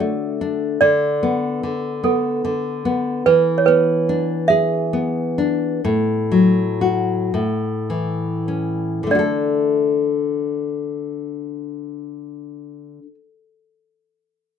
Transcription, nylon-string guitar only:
0.00 0.78 D3 medium
0.00 0.79 A3 soft
0.00 0.40 D4 soft
0.00 0.78 F#4 soft
0.41 0.81 D4 medium
0.81 1.62 D3 medium
1.23 2.02 B3 soft
1.63 2.43 D3 soft
2.04 2.84 B3 soft
2.45 3.23 D3 soft
2.85 3.24 B3 medium
3.26 5.79 E3 medium
3.68 4.92 B3 medium
4.09 5.37 D4 medium
4.50 5.79 G#4 soft
4.93 5.80 B3 soft
5.38 5.82 D4 medium
5.85 7.30 A2 medium
6.32 7.31 F#3 soft
6.81 7.32 F#4 soft
7.34 9.07 A2 medium
7.90 9.03 E3 soft
8.48 9.09 C#4 soft
9.03 12.98 D3 soft
9.03 13.02 A3 soft
9.11 13.06 D4 soft
9.15 9.18 F#4 soft
9.15 13.14 A4 soft

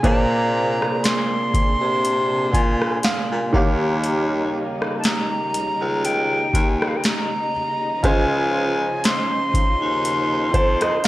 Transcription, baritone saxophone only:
0.04 0.93 A#2 loud
1.54 1.65 C3 soft
1.81 2.55 C3 medium
2.54 2.98 A#2 medium
3.32 3.52 A#2 medium
3.54 4.88 D#2 loud
5.55 5.65 C#2 soft
5.81 6.46 C#2 medium
6.54 6.98 D#2 medium
8.04 8.93 C#2 loud
9.54 9.65 D#2 soft
9.81 10.56 D#2 medium
10.54 10.98 F2 loud

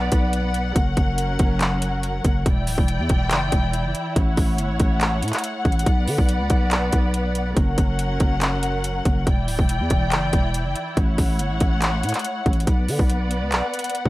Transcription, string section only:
0.00 0.74 B3 medium
0.00 0.74 B4 medium
0.00 0.74 D5 medium
0.00 2.43 F#5 medium
0.76 2.44 F#3 medium
0.76 2.44 C#4 medium
0.76 2.44 A#4 medium
2.46 4.14 E3 medium
2.46 5.83 E4 medium
2.46 4.14 D5 medium
2.46 4.14 G5 medium
4.16 5.85 A3 medium
4.16 5.85 C#5 medium
4.16 7.53 F#5 medium
5.86 7.55 B3 medium
5.86 7.55 B4 medium
5.86 7.55 D5 medium
7.57 9.25 F#3 medium
7.57 9.25 C#4 medium
7.57 9.25 A#4 medium
7.57 9.25 F#5 medium
9.27 10.95 E3 medium
9.27 12.64 E4 medium
9.27 10.95 D5 medium
9.27 10.95 G5 medium
10.97 12.66 A3 medium
10.97 12.66 C#5 medium
10.97 12.66 F#5 medium
12.67 14.09 B3 medium
12.67 14.09 B4 medium
12.67 14.09 D5 medium
12.67 14.09 F#5 medium

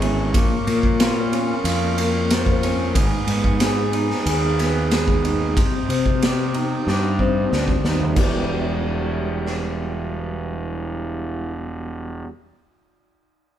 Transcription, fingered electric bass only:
0.00 0.34 G#1 medium
0.34 0.48 A#1 medium
0.67 1.52 A#2 medium
1.64 2.97 F2 medium
2.96 3.10 G#1 medium
3.27 4.12 G#2 medium
4.26 5.57 D#2 medium
5.57 5.71 C2 medium
5.89 6.73 C3 medium
6.87 7.43 G2 medium
7.52 7.81 D2 medium
7.84 8.13 D#2 medium
8.17 12.23 E1 medium

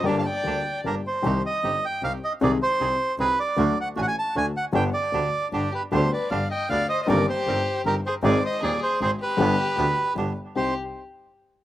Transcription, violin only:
0.05 0.17 A#4 medium
0.19 0.25 F5 medium
0.26 0.81 D5 medium
5.53 5.71 D4 medium
5.72 5.81 G4 medium
5.93 6.10 G4 medium
6.12 6.30 B4 medium
6.32 6.49 D5 medium
6.52 6.69 D#5 medium
6.71 6.88 D5 medium
6.91 7.03 C5 medium
7.05 7.08 C5 medium
7.11 7.27 A#4 medium
7.31 7.82 G4 medium
7.88 7.96 G4 medium
8.07 8.15 G#4 medium
8.25 8.42 G#4 medium
8.43 8.60 C5 medium
8.63 8.79 G#4 medium
8.80 8.98 G#4 medium
9.02 9.10 G#4 medium
9.20 10.12 G4 medium
10.56 10.74 G4 medium

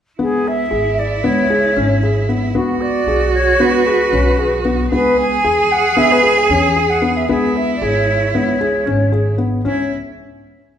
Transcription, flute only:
0.21 0.49 G#4 medium
0.48 1.00 E5 medium
0.99 1.27 D5 medium
1.26 2.29 C#5 medium
2.55 2.82 F#4 medium
2.81 3.33 D5 medium
3.34 3.62 C#5 medium
3.61 4.66 B4 medium
4.94 5.17 B4 medium
5.20 5.73 G#5 medium
5.71 5.99 F#5 medium
5.98 6.13 E5 medium
6.11 6.39 B4 medium
6.38 6.91 G#5 medium
6.90 7.18 F#5 medium
7.16 7.29 E5 medium
7.30 7.58 G#4 medium
7.56 7.75 E5 medium
7.76 7.85 D5 medium
7.83 8.34 C#5 medium
8.35 9.36 C#5 medium
9.66 9.90 C#5 medium

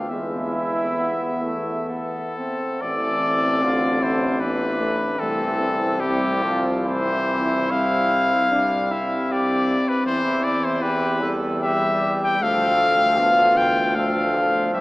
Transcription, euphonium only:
0.10 2.42 B3 medium
2.82 4.43 C4 medium
4.41 4.82 B3 medium
4.80 5.20 A3 medium
5.20 5.61 A3 medium
5.59 6.87 C4 medium
6.88 7.70 C4 medium
7.72 8.53 C4 medium
8.51 8.91 D4 medium
8.92 11.29 C4 medium
11.62 12.43 G3 medium
12.41 13.20 A3 medium
13.19 13.97 B3 medium
13.96 14.74 A3 medium
14.74 14.81 G3 medium

